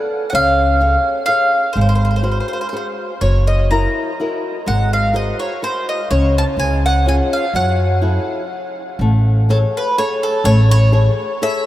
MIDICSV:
0, 0, Header, 1, 4, 480
1, 0, Start_track
1, 0, Tempo, 480000
1, 332, Time_signature, 3, 2, 24, 8
1, 7538, Tempo, 485044
1, 11619, End_track
2, 0, Start_track
2, 0, Title_t, "Mandolin"
2, 0, Program_c, 0, 25
2, 297, Note_on_c, 0, 78, 76
2, 344, Note_off_c, 0, 78, 0
2, 348, Note_on_c, 0, 77, 102
2, 1247, Note_off_c, 0, 77, 0
2, 1258, Note_on_c, 0, 77, 93
2, 1714, Note_off_c, 0, 77, 0
2, 1728, Note_on_c, 0, 72, 66
2, 1800, Note_off_c, 0, 72, 0
2, 1812, Note_on_c, 0, 72, 50
2, 1876, Note_off_c, 0, 72, 0
2, 1888, Note_on_c, 0, 72, 67
2, 1942, Note_off_c, 0, 72, 0
2, 1954, Note_on_c, 0, 72, 56
2, 2035, Note_off_c, 0, 72, 0
2, 2047, Note_on_c, 0, 72, 50
2, 2095, Note_off_c, 0, 72, 0
2, 2107, Note_on_c, 0, 72, 39
2, 2149, Note_off_c, 0, 72, 0
2, 2161, Note_on_c, 0, 72, 48
2, 2224, Note_off_c, 0, 72, 0
2, 2236, Note_on_c, 0, 72, 37
2, 2304, Note_off_c, 0, 72, 0
2, 2316, Note_on_c, 0, 72, 44
2, 2391, Note_off_c, 0, 72, 0
2, 2402, Note_on_c, 0, 72, 40
2, 2469, Note_off_c, 0, 72, 0
2, 2481, Note_on_c, 0, 72, 49
2, 2520, Note_off_c, 0, 72, 0
2, 2532, Note_on_c, 0, 72, 48
2, 2598, Note_off_c, 0, 72, 0
2, 2610, Note_on_c, 0, 72, 58
2, 2677, Note_off_c, 0, 72, 0
2, 2689, Note_on_c, 0, 72, 49
2, 2753, Note_off_c, 0, 72, 0
2, 2765, Note_on_c, 0, 72, 48
2, 2863, Note_off_c, 0, 72, 0
2, 3212, Note_on_c, 0, 73, 79
2, 3457, Note_off_c, 0, 73, 0
2, 3474, Note_on_c, 0, 75, 75
2, 3688, Note_off_c, 0, 75, 0
2, 3708, Note_on_c, 0, 82, 70
2, 4672, Note_off_c, 0, 82, 0
2, 4676, Note_on_c, 0, 78, 87
2, 4911, Note_off_c, 0, 78, 0
2, 4932, Note_on_c, 0, 77, 79
2, 5137, Note_off_c, 0, 77, 0
2, 5158, Note_on_c, 0, 75, 73
2, 5390, Note_off_c, 0, 75, 0
2, 5395, Note_on_c, 0, 73, 71
2, 5605, Note_off_c, 0, 73, 0
2, 5638, Note_on_c, 0, 72, 83
2, 5867, Note_off_c, 0, 72, 0
2, 5888, Note_on_c, 0, 75, 69
2, 6102, Note_off_c, 0, 75, 0
2, 6106, Note_on_c, 0, 73, 85
2, 6340, Note_off_c, 0, 73, 0
2, 6382, Note_on_c, 0, 81, 90
2, 6438, Note_off_c, 0, 81, 0
2, 6595, Note_on_c, 0, 80, 84
2, 6823, Note_off_c, 0, 80, 0
2, 6857, Note_on_c, 0, 78, 88
2, 7053, Note_off_c, 0, 78, 0
2, 7085, Note_on_c, 0, 80, 83
2, 7150, Note_off_c, 0, 80, 0
2, 7331, Note_on_c, 0, 77, 82
2, 7551, Note_off_c, 0, 77, 0
2, 7558, Note_on_c, 0, 78, 85
2, 8728, Note_off_c, 0, 78, 0
2, 9485, Note_on_c, 0, 69, 64
2, 9552, Note_off_c, 0, 69, 0
2, 9748, Note_on_c, 0, 71, 78
2, 9945, Note_off_c, 0, 71, 0
2, 9958, Note_on_c, 0, 73, 94
2, 10191, Note_off_c, 0, 73, 0
2, 10204, Note_on_c, 0, 69, 72
2, 10417, Note_off_c, 0, 69, 0
2, 10421, Note_on_c, 0, 73, 114
2, 10659, Note_off_c, 0, 73, 0
2, 10681, Note_on_c, 0, 73, 98
2, 11338, Note_off_c, 0, 73, 0
2, 11387, Note_on_c, 0, 76, 98
2, 11619, Note_off_c, 0, 76, 0
2, 11619, End_track
3, 0, Start_track
3, 0, Title_t, "Nylon-string guitar"
3, 0, Program_c, 1, 24
3, 0, Note_on_c, 1, 69, 50
3, 0, Note_on_c, 1, 71, 35
3, 0, Note_on_c, 1, 74, 47
3, 237, Note_off_c, 1, 69, 0
3, 238, Note_off_c, 1, 71, 0
3, 239, Note_off_c, 1, 74, 0
3, 327, Note_on_c, 1, 61, 61
3, 788, Note_off_c, 1, 61, 0
3, 804, Note_on_c, 1, 68, 43
3, 808, Note_on_c, 1, 73, 38
3, 814, Note_on_c, 1, 77, 47
3, 1185, Note_off_c, 1, 68, 0
3, 1185, Note_off_c, 1, 73, 0
3, 1187, Note_off_c, 1, 77, 0
3, 1278, Note_on_c, 1, 68, 40
3, 1284, Note_on_c, 1, 73, 45
3, 1286, Note_on_c, 1, 77, 47
3, 1663, Note_off_c, 1, 68, 0
3, 1664, Note_off_c, 1, 73, 0
3, 1667, Note_off_c, 1, 77, 0
3, 1764, Note_on_c, 1, 56, 59
3, 2226, Note_on_c, 1, 66, 44
3, 2230, Note_off_c, 1, 56, 0
3, 2231, Note_on_c, 1, 68, 33
3, 2235, Note_on_c, 1, 72, 46
3, 2620, Note_off_c, 1, 66, 0
3, 2623, Note_off_c, 1, 68, 0
3, 2625, Note_off_c, 1, 72, 0
3, 2727, Note_on_c, 1, 68, 38
3, 2731, Note_on_c, 1, 66, 47
3, 2738, Note_on_c, 1, 72, 43
3, 3118, Note_off_c, 1, 68, 0
3, 3121, Note_off_c, 1, 66, 0
3, 3125, Note_off_c, 1, 72, 0
3, 3223, Note_on_c, 1, 54, 51
3, 3695, Note_off_c, 1, 54, 0
3, 3712, Note_on_c, 1, 64, 47
3, 3717, Note_on_c, 1, 70, 47
3, 3719, Note_on_c, 1, 66, 39
3, 4096, Note_off_c, 1, 64, 0
3, 4098, Note_off_c, 1, 70, 0
3, 4100, Note_off_c, 1, 66, 0
3, 4197, Note_on_c, 1, 66, 40
3, 4203, Note_on_c, 1, 64, 40
3, 4209, Note_on_c, 1, 70, 49
3, 4580, Note_off_c, 1, 66, 0
3, 4581, Note_off_c, 1, 64, 0
3, 4586, Note_off_c, 1, 70, 0
3, 4664, Note_on_c, 1, 56, 61
3, 5132, Note_off_c, 1, 56, 0
3, 5132, Note_on_c, 1, 66, 46
3, 5139, Note_on_c, 1, 68, 42
3, 5144, Note_on_c, 1, 72, 51
3, 5519, Note_off_c, 1, 66, 0
3, 5523, Note_off_c, 1, 68, 0
3, 5527, Note_off_c, 1, 72, 0
3, 5623, Note_on_c, 1, 66, 42
3, 5628, Note_on_c, 1, 68, 39
3, 5629, Note_on_c, 1, 72, 45
3, 6005, Note_off_c, 1, 66, 0
3, 6007, Note_off_c, 1, 68, 0
3, 6008, Note_off_c, 1, 72, 0
3, 6111, Note_on_c, 1, 49, 62
3, 6569, Note_off_c, 1, 49, 0
3, 6587, Note_on_c, 1, 49, 64
3, 7046, Note_off_c, 1, 49, 0
3, 7057, Note_on_c, 1, 61, 46
3, 7068, Note_on_c, 1, 65, 38
3, 7077, Note_on_c, 1, 68, 50
3, 7440, Note_off_c, 1, 61, 0
3, 7446, Note_off_c, 1, 65, 0
3, 7452, Note_off_c, 1, 68, 0
3, 7547, Note_on_c, 1, 54, 62
3, 8004, Note_off_c, 1, 54, 0
3, 8012, Note_on_c, 1, 64, 48
3, 8021, Note_on_c, 1, 66, 38
3, 8023, Note_on_c, 1, 69, 43
3, 8399, Note_off_c, 1, 64, 0
3, 8405, Note_off_c, 1, 66, 0
3, 8405, Note_off_c, 1, 69, 0
3, 8996, Note_on_c, 1, 57, 65
3, 9460, Note_off_c, 1, 57, 0
3, 9471, Note_on_c, 1, 68, 49
3, 9479, Note_on_c, 1, 69, 42
3, 9480, Note_on_c, 1, 73, 52
3, 9853, Note_off_c, 1, 68, 0
3, 9857, Note_off_c, 1, 73, 0
3, 9859, Note_off_c, 1, 69, 0
3, 9955, Note_on_c, 1, 68, 41
3, 9960, Note_on_c, 1, 69, 45
3, 9965, Note_on_c, 1, 73, 54
3, 10335, Note_off_c, 1, 68, 0
3, 10338, Note_off_c, 1, 69, 0
3, 10340, Note_off_c, 1, 73, 0
3, 10432, Note_on_c, 1, 57, 78
3, 10885, Note_on_c, 1, 68, 49
3, 10890, Note_off_c, 1, 57, 0
3, 10893, Note_on_c, 1, 69, 46
3, 10895, Note_on_c, 1, 73, 58
3, 11272, Note_off_c, 1, 68, 0
3, 11276, Note_off_c, 1, 73, 0
3, 11277, Note_off_c, 1, 69, 0
3, 11377, Note_on_c, 1, 68, 47
3, 11381, Note_on_c, 1, 69, 47
3, 11387, Note_on_c, 1, 73, 53
3, 11619, Note_off_c, 1, 68, 0
3, 11619, Note_off_c, 1, 69, 0
3, 11619, Note_off_c, 1, 73, 0
3, 11619, End_track
4, 0, Start_track
4, 0, Title_t, "Upright bass"
4, 0, Program_c, 2, 32
4, 334, Note_on_c, 2, 37, 83
4, 949, Note_off_c, 2, 37, 0
4, 1755, Note_on_c, 2, 32, 81
4, 2385, Note_off_c, 2, 32, 0
4, 3214, Note_on_c, 2, 30, 79
4, 3847, Note_off_c, 2, 30, 0
4, 4675, Note_on_c, 2, 32, 82
4, 5294, Note_off_c, 2, 32, 0
4, 6106, Note_on_c, 2, 37, 86
4, 6414, Note_off_c, 2, 37, 0
4, 6568, Note_on_c, 2, 37, 86
4, 7193, Note_off_c, 2, 37, 0
4, 7535, Note_on_c, 2, 42, 91
4, 8160, Note_off_c, 2, 42, 0
4, 8974, Note_on_c, 2, 33, 100
4, 9604, Note_off_c, 2, 33, 0
4, 10412, Note_on_c, 2, 33, 102
4, 11034, Note_off_c, 2, 33, 0
4, 11619, End_track
0, 0, End_of_file